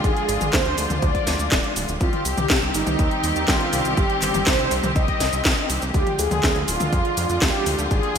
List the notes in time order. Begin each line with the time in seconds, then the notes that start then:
Already playing: D3 F3 G#3 F4
0.04 G#1 G#4, kick, closed hi-hat, cabasa
0.17 closed hi-hat
0.29 G#1, open hi-hat, cabasa
0.41 G#1, closed hi-hat, high tom, cabasa
0.53 D2 C5, kick, snare, clap, closed hi-hat, cabasa
0.66 D2, closed hi-hat
0.78 D2, open hi-hat, cabasa
0.90 D2, closed hi-hat, high tom, cabasa
1.02 D2 D5, kick, closed hi-hat, cabasa
1.15 kick, closed hi-hat
1.27 D2, snare, open hi-hat, cabasa
1.39 D2, closed hi-hat, cabasa
1.52 D1, kick, snare, clap, closed hi-hat, cabasa
1.64 closed hi-hat
1.76 D1, open hi-hat, cabasa
1.88 D1, closed hi-hat, cabasa
2.01 C2 D#3 G3 C4 F4 G4, kick, closed hi-hat, cabasa
2.13 closed hi-hat, high tom
2.25 C2 G4, open hi-hat, cabasa
2.38 C2, closed hi-hat, high tom, cabasa
2.50 C2, kick, snare, clap, closed hi-hat, cabasa
2.62 C2, closed hi-hat
2.74 G1 D#4, open hi-hat, cabasa
2.87 C2, closed hi-hat, high tom, cabasa
2.99 D#2 D#4, kick, closed hi-hat, cabasa
3.11 closed hi-hat
3.24 D#2, open hi-hat, cabasa
3.36 D#2, closed hi-hat, cabasa
3.48 C2 F4, kick, snare, clap, closed hi-hat, cabasa
3.61 closed hi-hat
3.73 C2, open hi-hat, cabasa
3.85 C2, closed hi-hat, cabasa
3.97 G1 G4, kick, closed hi-hat, cabasa
4.10 closed hi-hat
4.22 G1, clap, open hi-hat, cabasa
4.34 G1, closed hi-hat, high tom, cabasa
4.47 C2 C5, kick, snare, clap, closed hi-hat, cabasa
4.59 C2, closed hi-hat
4.71 C2, open hi-hat, cabasa
4.83 C2, closed hi-hat, high tom, cabasa
4.96 C2 D#5, kick, closed hi-hat, cabasa
5.08 kick, closed hi-hat
5.20 C2, snare, open hi-hat, cabasa
5.33 C2, closed hi-hat, cabasa
5.45 C2, kick, snare, clap, closed hi-hat, cabasa
5.57 closed hi-hat
5.70 C2, open hi-hat, cabasa
5.82 C2, closed hi-hat, cabasa
5.94 D2 D3 F3 G#3 F4 G4, kick, closed hi-hat, cabasa
6.07 closed hi-hat, high tom
6.19 D2 G#4, open hi-hat, cabasa
6.31 D2, closed hi-hat, high tom, cabasa
6.43 D2, kick, snare, clap, closed hi-hat, cabasa
6.56 D2, closed hi-hat
6.68 D1 F4, open hi-hat, cabasa
6.80 D2, closed hi-hat, high tom, cabasa
6.92 F2 F4, kick, closed hi-hat, cabasa
7.05 closed hi-hat
7.17 F2, open hi-hat, cabasa
7.30 F2, closed hi-hat, cabasa
7.42 D2 G4, kick, snare, clap, closed hi-hat, cabasa
7.54 closed hi-hat
7.66 D2, open hi-hat, cabasa
7.79 D2, closed hi-hat, cabasa
7.91 G#1 A#3 G#4, kick, closed hi-hat, cabasa
8.03 closed hi-hat